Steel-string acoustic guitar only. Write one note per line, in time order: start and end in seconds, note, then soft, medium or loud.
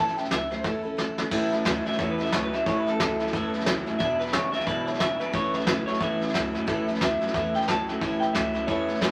0.00 0.18 A2 medium
0.00 0.18 E3 medium
0.00 0.18 A3 medium
0.00 0.17 C#4 medium
0.00 0.16 E4 medium
0.17 0.30 A3 soft
0.17 0.31 C#4 soft
0.17 0.31 E4 medium
0.30 0.51 E3 medium
0.30 0.52 A3 medium
0.30 0.50 C#4 medium
0.30 0.48 E4 medium
0.50 0.64 A3 soft
0.50 0.64 C#4 soft
0.50 0.64 E4 medium
0.63 0.84 A2 medium
0.63 0.85 E3 medium
0.63 0.85 A3 medium
0.63 0.84 C#4 medium
0.63 0.81 E4 medium
0.83 0.97 A3 soft
0.83 0.98 C#4 soft
0.83 0.97 E4 medium
0.97 1.18 E3 medium
0.97 1.19 A3 medium
0.97 1.19 C#4 medium
0.97 1.16 E4 medium
1.17 1.31 A3 soft
1.17 1.32 C#4 soft
1.17 1.32 E4 soft
1.31 1.52 A2 medium
1.31 1.52 E3 medium
1.31 1.52 A3 medium
1.31 1.52 C#4 medium
1.31 1.50 E4 loud
1.52 1.65 A3 soft
1.52 1.66 C#4 medium
1.52 1.65 E4 medium
1.65 1.85 E3 medium
1.65 1.86 A3 medium
1.65 1.86 C#4 medium
1.65 1.84 E4 medium
1.85 1.99 A3 soft
1.85 1.99 C#4 soft
1.85 1.99 E4 medium
1.98 2.19 A2 medium
1.98 2.19 E3 medium
1.98 2.20 A3 medium
1.98 2.19 C#4 medium
1.98 2.17 E4 medium
2.18 2.32 A3 soft
2.18 2.33 C#4 soft
2.18 2.32 E4 medium
2.31 2.52 E3 medium
2.31 2.53 A3 medium
2.31 2.53 C#4 medium
2.31 2.52 E4 medium
2.53 2.66 A3 soft
2.53 2.67 C#4 soft
2.53 2.66 E4 medium
2.67 2.87 A2 medium
2.67 2.87 E3 medium
2.67 2.87 A3 medium
2.67 2.87 C#4 medium
2.67 2.85 E4 medium
2.86 3.00 A3 soft
2.86 3.01 C#4 soft
2.86 3.00 E4 medium
3.00 3.20 E3 medium
3.00 3.21 A3 medium
3.00 3.20 C#4 medium
3.00 3.18 E4 medium
3.19 3.34 A3 soft
3.19 3.34 C#4 soft
3.19 3.33 E4 medium
3.34 3.54 A2 medium
3.34 3.54 E3 medium
3.34 3.54 A3 medium
3.34 3.54 C#4 loud
3.34 3.53 E4 medium
3.54 3.67 A3 soft
3.54 3.68 C#4 medium
3.54 3.67 E4 medium
3.67 3.87 E3 medium
3.67 3.88 A3 medium
3.67 3.87 C#4 medium
3.67 3.85 E4 medium
3.86 4.00 A3 soft
3.86 4.00 C#4 medium
3.86 4.00 E4 medium
3.99 4.20 E2 medium
3.99 4.20 B2 medium
3.99 4.20 E3 medium
3.99 4.20 G#3 medium
3.99 4.20 D4 medium
3.99 4.19 E4 medium
4.20 4.32 E3 soft
4.20 4.33 G#3 soft
4.20 4.34 D4 soft
4.20 4.33 E4 medium
4.33 4.53 E3 medium
4.33 4.54 G#3 medium
4.33 4.53 D4 medium
4.33 4.51 E4 medium
4.53 4.67 E3 soft
4.53 4.68 G#3 soft
4.53 4.67 D4 soft
4.53 4.66 E4 medium
4.67 4.87 E2 medium
4.67 4.87 B2 medium
4.67 4.88 E3 medium
4.67 4.88 G#3 medium
4.67 4.87 D4 medium
4.67 4.86 E4 medium
4.87 4.99 E3 soft
4.87 5.00 G#3 soft
4.87 5.01 D4 medium
4.87 5.00 E4 medium
5.00 5.20 E3 medium
5.00 5.20 G#3 medium
5.00 5.20 D4 medium
5.00 5.18 E4 medium
5.20 5.32 E3 soft
5.20 5.33 G#3 soft
5.20 5.34 D4 soft
5.20 5.33 E4 medium
5.32 5.53 A2 medium
5.32 5.54 E3 medium
5.32 5.54 A3 medium
5.32 5.53 C#4 medium
5.32 5.52 E4 medium
5.53 5.67 A3 soft
5.53 5.68 C#4 medium
5.53 5.67 E4 medium
5.67 5.87 E3 medium
5.67 5.88 A3 medium
5.67 5.88 C#4 medium
5.67 5.86 E4 medium
5.87 6.00 A3 soft
5.87 6.01 C#4 medium
5.87 6.01 E4 medium
6.00 6.20 A2 medium
6.00 6.21 E3 medium
6.00 6.21 A3 medium
6.00 6.20 C#4 medium
6.00 6.18 E4 medium
6.19 6.33 A3 soft
6.19 6.34 C#4 medium
6.19 6.33 E4 medium
6.34 6.54 E3 medium
6.34 6.54 A3 medium
6.34 6.53 C#4 medium
6.34 6.52 E4 medium
6.53 6.66 A3 soft
6.53 6.67 C#4 medium
6.53 6.67 E4 medium
6.67 6.87 A2 medium
6.67 6.87 E3 medium
6.67 6.87 A3 loud
6.67 6.88 C#4 medium
6.67 6.86 E4 loud
6.87 7.00 A3 medium
6.87 7.01 C#4 medium
6.87 7.01 E4 medium
7.00 7.21 E3 medium
7.00 7.21 A3 medium
7.00 7.20 C#4 medium
7.00 7.19 E4 medium
7.20 7.34 A3 soft
7.20 7.35 C#4 soft
7.20 7.34 E4 medium
7.34 7.54 A2 medium
7.34 7.54 E3 medium
7.34 7.55 A3 medium
7.34 7.54 C#4 medium
7.34 7.53 E4 medium
7.54 7.68 A3 soft
7.54 7.68 C#4 medium
7.54 7.68 E4 medium
7.68 7.88 E3 medium
7.68 7.88 A3 medium
7.68 7.88 C#4 medium
7.68 7.87 E4 medium
7.88 8.01 A3 soft
7.88 8.01 C#4 medium
7.88 8.01 E4 medium
8.01 8.21 A2 medium
8.01 8.21 E3 medium
8.01 8.22 A3 medium
8.01 8.22 C#4 medium
8.01 8.20 E4 medium
8.22 8.35 A3 soft
8.22 8.36 C#4 soft
8.22 8.35 E4 medium
8.35 8.55 E3 medium
8.35 8.55 A3 medium
8.35 8.54 C#4 medium
8.35 8.52 E4 medium
8.54 8.67 A3 soft
8.54 8.68 C#4 soft
8.54 8.67 E4 medium
8.68 8.88 A2 medium
8.68 8.88 E3 medium
8.68 8.88 A3 medium
8.68 8.88 C#4 medium
8.68 8.86 E4 medium
8.88 9.01 A3 soft
8.88 9.02 C#4 soft
8.88 9.01 E4 medium
9.01 9.11 E3 medium
9.01 9.11 A3 medium
9.01 9.11 C#4 medium
9.01 9.11 E4 medium